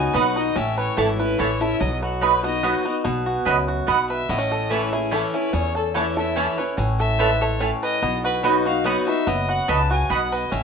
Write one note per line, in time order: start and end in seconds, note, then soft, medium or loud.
0.00 0.10 F#2 medium
0.00 0.52 B3 medium
0.00 0.14 D#4 soft
0.00 0.32 D#4 medium
0.00 0.13 F#4 medium
0.00 0.17 G#5 medium
0.13 0.50 B1 medium
0.13 0.35 F#3 soft
0.13 0.24 B3 medium
0.13 0.36 B3 medium
0.13 0.36 D#4 medium
0.13 0.24 F#4 medium
0.13 0.35 F#4 medium
0.13 0.56 B4 medium
0.13 0.24 D#5 medium
0.13 0.39 F#5 medium
0.13 0.24 B5 medium
0.36 0.56 D#4 medium
0.36 0.55 F#4 medium
0.36 0.58 D#5 medium
0.56 0.87 A1 loud
0.56 1.35 A2 medium
0.56 1.15 C#4 medium
0.56 0.78 E5 medium
0.78 1.18 B4 medium
0.78 1.00 C#5 medium
0.96 1.33 G#1 medium
0.96 1.18 E3 medium
0.96 1.07 A3 medium
0.96 1.19 A3 medium
0.96 1.19 C#4 medium
0.96 1.07 E4 loud
0.96 1.18 E4 medium
0.96 1.57 A4 medium
0.96 1.19 A4 medium
0.96 1.07 C#5 loud
0.96 1.07 A5 loud
1.19 1.38 C#4 soft
1.19 1.38 E4 medium
1.19 1.77 B4 medium
1.19 1.41 B4 loud
1.38 1.75 A1 medium
1.38 1.60 E3 medium
1.38 1.48 A3 medium
1.38 1.60 A3 medium
1.38 1.60 C#4 medium
1.38 1.80 E4 medium
1.38 1.49 E4 medium
1.38 1.59 E4 medium
1.38 1.62 C#5 medium
1.38 1.49 C#5 medium
1.38 1.49 A5 loud
1.61 1.81 C#4 medium
1.61 1.80 E4 medium
1.61 1.80 A4 medium
1.61 1.81 E5 loud
1.80 2.74 B1 loud
1.80 2.59 B2 medium
1.80 2.40 F#3 medium
1.80 2.02 D#5 medium
2.03 2.43 B3 medium
2.03 2.24 F#4 medium
2.21 2.43 F#3 medium
2.21 2.31 B3 medium
2.21 2.43 B3 medium
2.21 2.44 D#4 medium
2.21 2.31 F#4 medium
2.21 2.42 F#4 medium
2.21 2.81 B4 medium
2.21 2.44 B4 medium
2.21 2.32 D#5 loud
2.21 2.32 B5 loud
2.43 2.84 B3 medium
2.43 2.63 D#4 soft
2.43 2.62 F#4 medium
2.43 2.92 D#5 medium
2.63 2.84 F#3 medium
2.63 2.73 B3 medium
2.63 2.85 B3 medium
2.63 2.85 D#4 medium
2.63 3.05 F#4 medium
2.63 2.73 F#4 medium
2.63 2.84 F#4 medium
2.63 2.73 D#5 medium
2.63 2.73 B5 medium
2.85 3.03 B3 medium
2.85 3.05 D#4 medium
2.85 3.04 F#4 medium
3.04 3.36 B1 loud
3.04 3.84 B2 medium
3.04 3.64 B3 medium
3.26 3.67 F#4 medium
3.45 3.82 C#2 medium
3.45 3.86 F#2 medium
3.45 3.55 B3 medium
3.45 3.56 F#4 loud
3.45 4.05 B4 medium
3.45 3.56 D#5 loud
3.45 3.56 B5 loud
3.68 4.25 F#4 medium
3.87 4.23 B1 medium
3.87 4.27 B2 medium
3.87 3.97 B3 medium
3.87 4.28 B3 medium
3.87 3.97 F#4 medium
3.87 3.97 D#5 medium
3.87 4.09 F#5 medium
3.87 3.97 B5 loud
4.10 4.29 B4 medium
4.10 4.31 E5 medium
4.29 5.22 A1 loud
4.29 5.08 A2 medium
4.29 4.38 B3 medium
4.29 4.72 D#5 medium
4.38 4.70 C#4 medium
4.52 5.12 A4 medium
4.70 4.92 E3 medium
4.70 4.80 A3 medium
4.70 4.92 A3 medium
4.70 5.34 C#4 medium
4.70 4.92 C#4 medium
4.70 4.80 E4 loud
4.70 4.92 E4 medium
4.70 4.92 B4 medium
4.70 4.80 C#5 loud
4.70 4.80 A5 medium
4.93 5.12 C#4 soft
4.93 5.11 E4 medium
4.93 6.33 E4 medium
4.93 5.14 G#4 medium
5.11 5.33 E3 medium
5.11 5.21 A3 medium
5.11 5.33 A3 medium
5.11 5.34 C#4 medium
5.11 5.21 E4 medium
5.11 5.32 E4 medium
5.11 5.75 A4 medium
5.11 5.36 A4 medium
5.11 5.22 C#5 medium
5.11 5.22 A5 loud
5.34 5.53 C#4 medium
5.34 5.52 E4 medium
5.34 5.55 B4 medium
5.53 6.46 E2 medium
5.53 6.33 E2 medium
5.53 6.12 C#4 medium
5.53 5.75 C#5 medium
5.75 6.16 A4 medium
5.75 5.87 A4 medium
5.94 6.16 E3 medium
5.94 6.04 A3 loud
5.94 6.17 A3 medium
5.94 6.17 C#4 medium
5.94 6.04 E4 medium
5.94 6.15 E4 loud
5.94 6.54 B4 medium
5.94 6.05 C#5 medium
5.94 6.05 A5 loud
6.16 6.36 C#4 medium
6.16 6.35 E4 medium
6.16 6.74 A4 medium
6.16 6.55 E5 medium
6.36 6.57 E3 medium
6.36 6.46 A3 medium
6.36 6.58 A3 medium
6.36 6.76 C#4 medium
6.36 6.58 C#4 medium
6.36 6.46 E4 medium
6.36 6.57 E4 medium
6.36 6.46 C#5 medium
6.36 6.46 A5 loud
6.58 6.78 C#4 soft
6.58 6.77 E4 medium
6.58 7.15 B4 medium
6.58 6.68 C#5 medium
6.77 7.71 A1 loud
6.77 7.57 A2 medium
6.77 7.37 C#4 medium
6.99 7.40 A4 medium
6.99 7.43 E5 loud
7.19 7.59 G#2 medium
7.19 7.29 A3 loud
7.19 7.29 E4 loud
7.19 7.79 B4 medium
7.19 7.29 C#5 loud
7.19 7.29 A5 loud
7.41 7.98 A4 medium
7.41 7.61 C#5 medium
7.60 8.00 A2 medium
7.60 7.70 A3 medium
7.60 8.02 C#4 medium
7.60 7.70 E4 medium
7.60 7.71 C#5 medium
7.60 7.71 A5 medium
7.83 8.02 B4 medium
7.83 8.22 D#5 loud
8.02 8.96 B1 loud
8.02 8.82 B2 medium
8.02 8.62 B3 medium
8.24 8.65 F#4 medium
8.24 8.36 B4 loud
8.43 8.65 F#3 medium
8.43 8.53 B3 loud
8.43 8.65 B3 medium
8.43 8.65 D#4 medium
8.43 8.53 F#4 medium
8.43 8.64 F#4 medium
8.43 9.03 B4 medium
8.43 8.54 D#5 loud
8.43 8.54 B5 loud
8.65 8.84 D#4 soft
8.65 8.84 F#4 medium
8.65 9.23 F#4 medium
8.65 8.87 F5 medium
8.84 9.06 F#3 medium
8.84 8.95 B3 medium
8.84 9.06 B3 medium
8.84 9.26 B3 medium
8.84 9.07 D#4 medium
8.84 8.95 F#4 medium
8.84 9.06 F#4 medium
8.84 8.95 D#5 medium
8.84 9.07 F#5 medium
8.84 8.95 B5 medium
9.07 9.27 D#4 medium
9.07 9.26 F#4 medium
9.07 9.65 B4 medium
9.07 9.29 E5 medium
9.27 9.58 F#1 medium
9.27 10.06 F#2 medium
9.27 9.86 B3 medium
9.27 9.51 D#5 medium
9.49 9.89 F#4 medium
9.49 9.70 F#5 loud
9.68 10.04 C#2 medium
9.68 10.08 C#3 medium
9.68 9.78 B3 medium
9.68 9.78 F#4 loud
9.68 10.28 B4 medium
9.68 9.78 D#5 loud
9.68 9.91 A5 loud
9.68 9.78 B5 loud
9.91 10.48 F#4 medium
9.91 10.13 G#5 loud
10.09 10.46 B1 medium
10.09 10.50 B2 medium
10.09 10.19 B3 medium
10.09 10.51 B3 medium
10.09 10.20 F#4 medium
10.09 10.20 D#5 loud
10.09 10.34 F#5 medium
10.09 10.20 B5 medium
10.32 10.52 B4 medium
10.32 10.53 D#5 medium
10.52 10.63 A1 loud
10.52 10.63 A2 medium
10.52 10.63 C#4 medium
10.52 10.63 E5 medium